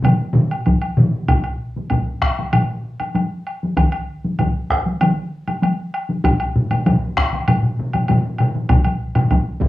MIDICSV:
0, 0, Header, 1, 3, 480
1, 0, Start_track
1, 0, Tempo, 621118
1, 995, Time_signature, 4, 2, 24, 8
1, 3871, Tempo, 614125
1, 7523, End_track
2, 0, Start_track
2, 0, Title_t, "Taiko and cinematic ensemble drums"
2, 20, Note_on_c, 9, 45, 93
2, 29, Note_on_c, 9, 47, 96
2, 45, Note_on_c, 9, 48, 69
2, 97, Note_off_c, 9, 45, 0
2, 106, Note_off_c, 9, 47, 0
2, 122, Note_off_c, 9, 48, 0
2, 161, Note_on_c, 9, 48, 22
2, 238, Note_off_c, 9, 48, 0
2, 260, Note_on_c, 9, 45, 96
2, 270, Note_on_c, 9, 47, 99
2, 280, Note_on_c, 9, 48, 58
2, 337, Note_off_c, 9, 45, 0
2, 347, Note_off_c, 9, 47, 0
2, 357, Note_off_c, 9, 48, 0
2, 400, Note_on_c, 9, 48, 21
2, 478, Note_off_c, 9, 48, 0
2, 517, Note_on_c, 9, 41, 63
2, 520, Note_on_c, 9, 48, 71
2, 594, Note_off_c, 9, 41, 0
2, 597, Note_off_c, 9, 48, 0
2, 643, Note_on_c, 9, 48, 20
2, 720, Note_off_c, 9, 48, 0
2, 750, Note_on_c, 9, 45, 102
2, 751, Note_on_c, 9, 47, 94
2, 763, Note_on_c, 9, 48, 53
2, 827, Note_off_c, 9, 45, 0
2, 828, Note_off_c, 9, 47, 0
2, 840, Note_off_c, 9, 48, 0
2, 886, Note_on_c, 9, 48, 22
2, 963, Note_off_c, 9, 48, 0
2, 991, Note_on_c, 9, 45, 74
2, 993, Note_on_c, 9, 41, 91
2, 1007, Note_on_c, 9, 48, 55
2, 1069, Note_off_c, 9, 45, 0
2, 1070, Note_off_c, 9, 41, 0
2, 1084, Note_off_c, 9, 48, 0
2, 1363, Note_on_c, 9, 48, 47
2, 1440, Note_off_c, 9, 48, 0
2, 1471, Note_on_c, 9, 45, 80
2, 1476, Note_on_c, 9, 41, 66
2, 1486, Note_on_c, 9, 48, 61
2, 1548, Note_off_c, 9, 45, 0
2, 1554, Note_off_c, 9, 41, 0
2, 1563, Note_off_c, 9, 48, 0
2, 1715, Note_on_c, 9, 37, 61
2, 1716, Note_on_c, 9, 41, 69
2, 1792, Note_off_c, 9, 37, 0
2, 1794, Note_off_c, 9, 41, 0
2, 1845, Note_on_c, 9, 48, 49
2, 1922, Note_off_c, 9, 48, 0
2, 1956, Note_on_c, 9, 45, 82
2, 1958, Note_on_c, 9, 48, 58
2, 2033, Note_off_c, 9, 45, 0
2, 2035, Note_off_c, 9, 48, 0
2, 2319, Note_on_c, 9, 48, 43
2, 2397, Note_off_c, 9, 48, 0
2, 2438, Note_on_c, 9, 48, 68
2, 2516, Note_off_c, 9, 48, 0
2, 2806, Note_on_c, 9, 48, 52
2, 2883, Note_off_c, 9, 48, 0
2, 2911, Note_on_c, 9, 41, 78
2, 2911, Note_on_c, 9, 47, 87
2, 2919, Note_on_c, 9, 48, 60
2, 2988, Note_off_c, 9, 47, 0
2, 2989, Note_off_c, 9, 41, 0
2, 2997, Note_off_c, 9, 48, 0
2, 3281, Note_on_c, 9, 48, 46
2, 3358, Note_off_c, 9, 48, 0
2, 3390, Note_on_c, 9, 47, 75
2, 3393, Note_on_c, 9, 41, 64
2, 3403, Note_on_c, 9, 48, 70
2, 3467, Note_off_c, 9, 47, 0
2, 3471, Note_off_c, 9, 41, 0
2, 3481, Note_off_c, 9, 48, 0
2, 3634, Note_on_c, 9, 41, 58
2, 3637, Note_on_c, 9, 37, 71
2, 3711, Note_off_c, 9, 41, 0
2, 3714, Note_off_c, 9, 37, 0
2, 3756, Note_on_c, 9, 48, 51
2, 3833, Note_off_c, 9, 48, 0
2, 3872, Note_on_c, 9, 47, 96
2, 3875, Note_on_c, 9, 48, 66
2, 3950, Note_off_c, 9, 47, 0
2, 3953, Note_off_c, 9, 48, 0
2, 4236, Note_on_c, 9, 48, 54
2, 4314, Note_off_c, 9, 48, 0
2, 4354, Note_on_c, 9, 48, 70
2, 4432, Note_off_c, 9, 48, 0
2, 4715, Note_on_c, 9, 48, 52
2, 4793, Note_off_c, 9, 48, 0
2, 4833, Note_on_c, 9, 45, 90
2, 4833, Note_on_c, 9, 48, 60
2, 4835, Note_on_c, 9, 41, 91
2, 4911, Note_off_c, 9, 48, 0
2, 4912, Note_off_c, 9, 45, 0
2, 4913, Note_off_c, 9, 41, 0
2, 5079, Note_on_c, 9, 45, 74
2, 5157, Note_off_c, 9, 45, 0
2, 5197, Note_on_c, 9, 45, 69
2, 5197, Note_on_c, 9, 48, 52
2, 5275, Note_off_c, 9, 45, 0
2, 5275, Note_off_c, 9, 48, 0
2, 5317, Note_on_c, 9, 48, 72
2, 5319, Note_on_c, 9, 45, 96
2, 5321, Note_on_c, 9, 41, 66
2, 5395, Note_off_c, 9, 48, 0
2, 5397, Note_off_c, 9, 45, 0
2, 5400, Note_off_c, 9, 41, 0
2, 5559, Note_on_c, 9, 37, 73
2, 5561, Note_on_c, 9, 41, 70
2, 5637, Note_off_c, 9, 37, 0
2, 5639, Note_off_c, 9, 41, 0
2, 5682, Note_on_c, 9, 48, 50
2, 5761, Note_off_c, 9, 48, 0
2, 5799, Note_on_c, 9, 45, 74
2, 5801, Note_on_c, 9, 48, 69
2, 5878, Note_off_c, 9, 45, 0
2, 5879, Note_off_c, 9, 48, 0
2, 5917, Note_on_c, 9, 45, 63
2, 5996, Note_off_c, 9, 45, 0
2, 6044, Note_on_c, 9, 45, 71
2, 6122, Note_off_c, 9, 45, 0
2, 6161, Note_on_c, 9, 45, 74
2, 6163, Note_on_c, 9, 48, 51
2, 6239, Note_off_c, 9, 45, 0
2, 6241, Note_off_c, 9, 48, 0
2, 6280, Note_on_c, 9, 48, 73
2, 6284, Note_on_c, 9, 45, 99
2, 6358, Note_off_c, 9, 48, 0
2, 6362, Note_off_c, 9, 45, 0
2, 6523, Note_on_c, 9, 45, 99
2, 6601, Note_off_c, 9, 45, 0
2, 6639, Note_on_c, 9, 48, 57
2, 6717, Note_off_c, 9, 48, 0
2, 6751, Note_on_c, 9, 41, 100
2, 6753, Note_on_c, 9, 45, 93
2, 6758, Note_on_c, 9, 47, 92
2, 6759, Note_on_c, 9, 48, 67
2, 6829, Note_off_c, 9, 41, 0
2, 6832, Note_off_c, 9, 45, 0
2, 6836, Note_off_c, 9, 47, 0
2, 6837, Note_off_c, 9, 48, 0
2, 6878, Note_on_c, 9, 48, 52
2, 6956, Note_off_c, 9, 48, 0
2, 7110, Note_on_c, 9, 47, 99
2, 7112, Note_on_c, 9, 45, 107
2, 7117, Note_on_c, 9, 48, 53
2, 7188, Note_off_c, 9, 47, 0
2, 7190, Note_off_c, 9, 45, 0
2, 7195, Note_off_c, 9, 48, 0
2, 7231, Note_on_c, 9, 41, 72
2, 7239, Note_on_c, 9, 48, 72
2, 7309, Note_off_c, 9, 41, 0
2, 7317, Note_off_c, 9, 48, 0
2, 7467, Note_on_c, 9, 45, 101
2, 7467, Note_on_c, 9, 47, 104
2, 7470, Note_on_c, 9, 41, 72
2, 7523, Note_off_c, 9, 41, 0
2, 7523, Note_off_c, 9, 45, 0
2, 7523, Note_off_c, 9, 47, 0
2, 7523, End_track
3, 0, Start_track
3, 0, Title_t, "Drums"
3, 37, Note_on_c, 9, 76, 47
3, 114, Note_off_c, 9, 76, 0
3, 397, Note_on_c, 9, 76, 36
3, 474, Note_off_c, 9, 76, 0
3, 509, Note_on_c, 9, 76, 35
3, 587, Note_off_c, 9, 76, 0
3, 631, Note_on_c, 9, 76, 42
3, 709, Note_off_c, 9, 76, 0
3, 993, Note_on_c, 9, 76, 50
3, 1070, Note_off_c, 9, 76, 0
3, 1111, Note_on_c, 9, 76, 38
3, 1188, Note_off_c, 9, 76, 0
3, 1467, Note_on_c, 9, 76, 41
3, 1544, Note_off_c, 9, 76, 0
3, 1954, Note_on_c, 9, 76, 52
3, 2031, Note_off_c, 9, 76, 0
3, 2316, Note_on_c, 9, 76, 40
3, 2393, Note_off_c, 9, 76, 0
3, 2437, Note_on_c, 9, 76, 38
3, 2515, Note_off_c, 9, 76, 0
3, 2679, Note_on_c, 9, 76, 36
3, 2756, Note_off_c, 9, 76, 0
3, 2915, Note_on_c, 9, 76, 51
3, 2992, Note_off_c, 9, 76, 0
3, 3031, Note_on_c, 9, 76, 45
3, 3109, Note_off_c, 9, 76, 0
3, 3391, Note_on_c, 9, 76, 44
3, 3469, Note_off_c, 9, 76, 0
3, 3872, Note_on_c, 9, 76, 51
3, 3950, Note_off_c, 9, 76, 0
3, 4236, Note_on_c, 9, 76, 39
3, 4314, Note_off_c, 9, 76, 0
3, 4359, Note_on_c, 9, 76, 44
3, 4437, Note_off_c, 9, 76, 0
3, 4599, Note_on_c, 9, 76, 40
3, 4677, Note_off_c, 9, 76, 0
3, 4838, Note_on_c, 9, 76, 51
3, 4916, Note_off_c, 9, 76, 0
3, 4956, Note_on_c, 9, 76, 43
3, 5034, Note_off_c, 9, 76, 0
3, 5198, Note_on_c, 9, 76, 44
3, 5276, Note_off_c, 9, 76, 0
3, 5320, Note_on_c, 9, 76, 45
3, 5398, Note_off_c, 9, 76, 0
3, 5798, Note_on_c, 9, 76, 52
3, 5877, Note_off_c, 9, 76, 0
3, 6157, Note_on_c, 9, 76, 43
3, 6235, Note_off_c, 9, 76, 0
3, 6273, Note_on_c, 9, 76, 42
3, 6351, Note_off_c, 9, 76, 0
3, 6509, Note_on_c, 9, 76, 38
3, 6587, Note_off_c, 9, 76, 0
3, 6750, Note_on_c, 9, 76, 51
3, 6828, Note_off_c, 9, 76, 0
3, 6870, Note_on_c, 9, 76, 41
3, 6948, Note_off_c, 9, 76, 0
3, 7110, Note_on_c, 9, 76, 43
3, 7188, Note_off_c, 9, 76, 0
3, 7231, Note_on_c, 9, 76, 43
3, 7309, Note_off_c, 9, 76, 0
3, 7523, End_track
0, 0, End_of_file